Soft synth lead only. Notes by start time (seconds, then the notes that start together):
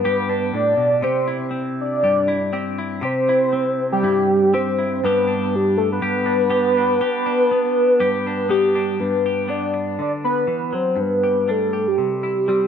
Already playing: B4
0.55 D5
1.04 C5
1.81 D5
3.04 C5
3.92 G4
4.54 C5
5.04 B4
5.55 G4
5.77 A4
5.92 B4
8.50 G4
9.00 B4
9.50 D5
10.01 D5
10.24 B4
10.74 C5
11.00 B4
11.51 A4
11.88 G4
12.48 G4